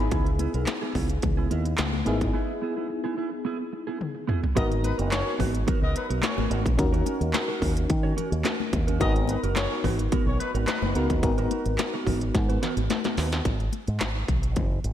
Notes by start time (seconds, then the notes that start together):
Already playing: B3 D#4 E4 G#4
0.11 C#2 B3 E4 G#4, kick, closed hi-hat, muted conga
0.26 closed hi-hat
0.39 B3 E4 G#4, closed hi-hat, muted conga
0.54 B1 B3 E4 A#4, closed hi-hat
0.67 muted clean electric guitar stroke, snare, clap, closed hi-hat, high conga
0.82 B3 E4 G#4
0.95 C#2 B3 E4 G#4, kick, open hi-hat
1.09 muted clean electric guitar stroke, closed hi-hat
1.22 C#2, muted clean electric guitar stroke, kick, closed hi-hat, muted conga, low conga
1.37 B3 E4 G#4
1.50 D#2 B3 E4 A#4, closed hi-hat, muted conga
1.65 muted clean electric guitar stroke, closed hi-hat
1.78 C#2, muted clean electric guitar stroke, snare, clap, closed hi-hat, high conga
1.93 muted clean electric guitar stroke, high conga
2.05 G#1 B3 D#4 E4 G#4 A#4, closed hi-hat
2.21 muted clean electric guitar stroke, kick, closed hi-hat
2.33 B3 E4 G#4
2.62 B3 E4 G#4
2.77 B3 E4 G#4
2.89 muted clean electric guitar stroke
3.04 B3 E4 G#4
3.17 B3 E4 G#4
3.32 muted clean electric guitar stroke
3.45 B3 E4 G#4
3.60 muted clean electric guitar stroke
3.73 muted clean electric guitar stroke
3.87 B3 E4 G#4
4.00 muted clean electric guitar stroke, high tom
4.15 muted clean electric guitar stroke
4.27 B3 E4 G#4, mid tom
4.42 muted clean electric guitar stroke, floor tom
4.55 G#1 B3 D#4 F#4 A#4 D#5, kick, closed hi-hat, muted conga
4.70 muted clean electric guitar stroke, closed hi-hat
4.83 F#3 D#4 B4, muted clean electric guitar stroke, closed hi-hat, muted conga
4.98 F#1 B3 F#4 A#4, closed hi-hat
5.11 C#4 A#4 C#5, muted clean electric guitar stroke, snare, clap, closed hi-hat, high conga
5.26 muted clean electric guitar stroke
5.39 G#1 B3 F#4 B4, kick, open hi-hat, low conga
5.54 muted clean electric guitar stroke, closed hi-hat
5.67 B3 F#4 A#4, kick, closed hi-hat, muted conga, low conga
5.82 C#2 B3 A#4 D#5, muted clean electric guitar stroke
5.95 F#3 D#4 B4, muted clean electric guitar stroke, closed hi-hat
6.09 B1 B3 F#4 A#4, closed hi-hat
6.23 C#4 A#4 C#5, muted clean electric guitar stroke, snare, clap, closed hi-hat, high conga
6.37 G#1 B3 F#4 B4, high conga
6.50 G#1 B3 F#4 A#4, closed hi-hat
6.65 A#1, muted clean electric guitar stroke, kick, closed hi-hat
6.78 D#2 C#4 D#4 F#4 A#4, muted clean electric guitar stroke, kick, closed hi-hat, muted conga
6.93 C#4 F#4 A#4, closed hi-hat
7.05 C#4 F#4 A#4, closed hi-hat, muted conga
7.20 D#2, muted clean electric guitar stroke, closed hi-hat
7.33 muted clean electric guitar stroke, snare, clap, closed hi-hat, high conga
7.48 C#4 F#4 A#4
7.61 D#2 C#4 F#4 A#4, kick, open hi-hat
7.76 muted clean electric guitar stroke, closed hi-hat
7.89 D#3, muted clean electric guitar stroke, kick, closed hi-hat, muted conga
8.03 C#4 F#4 C#5
8.16 C#4 F#4 A#4, closed hi-hat, muted conga, low conga
8.32 D#2, muted clean electric guitar stroke, closed hi-hat
8.44 C#4 F#4 A#4, snare, clap, closed hi-hat, high conga
8.59 muted clean electric guitar stroke, high conga
8.72 D#2, muted clean electric guitar stroke, kick, closed hi-hat
8.87 C#4 F#4 A#4, closed hi-hat
9.00 G#1 B3 D#4 F#4 A#4 D#5, kick, closed hi-hat, muted conga
9.16 muted clean electric guitar stroke, closed hi-hat
9.28 F#3 D#4 B4, muted clean electric guitar stroke, closed hi-hat, muted conga
9.43 F#1 B3 F#4 A#4, closed hi-hat
9.56 C#4 A#4 C#5, muted clean electric guitar stroke, snare, clap, closed hi-hat, high conga
9.71 muted clean electric guitar stroke
9.84 G#1 B3 F#4 B4, kick, open hi-hat, low conga
9.99 muted clean electric guitar stroke, closed hi-hat
10.12 B3 F#4 A#4, kick, closed hi-hat, muted conga, low conga
10.26 B1 C#4 A#4 C#5, muted clean electric guitar stroke
10.39 F#3 D#4 B4, muted clean electric guitar stroke, closed hi-hat, muted conga
10.54 G#1 B3 F#4 A#4, closed hi-hat
10.67 F#3 D#4 B4, muted clean electric guitar stroke, snare, clap, closed hi-hat, high conga
10.82 F#1 B3 F#4 B4, high conga
10.95 C#2 B3 D#4 F#4 A#4, closed hi-hat
11.10 D#2, muted clean electric guitar stroke, kick, closed hi-hat
11.22 G#1 B3 D#4 F#4 A#4, muted clean electric guitar stroke, kick, closed hi-hat, muted conga
11.38 B3 F#4 A#4, closed hi-hat
11.51 B3 F#4 A#4, closed hi-hat, muted conga
11.66 G#1, closed hi-hat
11.78 muted clean electric guitar stroke, snare, clap, closed hi-hat, high conga
11.94 B3 F#4 A#4
12.06 G#1 B3 F#4 A#4, kick, open hi-hat, low conga
12.21 muted clean electric guitar stroke, closed hi-hat
12.34 G#2, muted clean electric guitar stroke, kick, snare, closed hi-hat, muted conga
12.49 B3 F#4 B4, closed hi-hat
12.62 B3 F#4 A#4, snare, closed hi-hat, low conga
12.77 G#1, muted clean electric guitar stroke, closed hi-hat
12.90 muted clean electric guitar stroke, snare, closed hi-hat, high conga
13.04 B3 F#4 A#4, snare, closed hi-hat, high conga
13.17 D#2 B3 F#4 B4, snare, open hi-hat
13.32 muted clean electric guitar stroke, snare, closed hi-hat
13.45 G#1, kick, closed hi-hat, muted conga
13.60 closed hi-hat
13.72 closed hi-hat, muted conga
13.88 G#2, closed hi-hat
14.00 G#1, snare, clap, closed hi-hat, high conga
14.28 B1, kick, closed hi-hat, low conga
14.43 closed hi-hat
14.56 F#1, kick, closed hi-hat, muted conga, low conga
14.84 G#1, closed hi-hat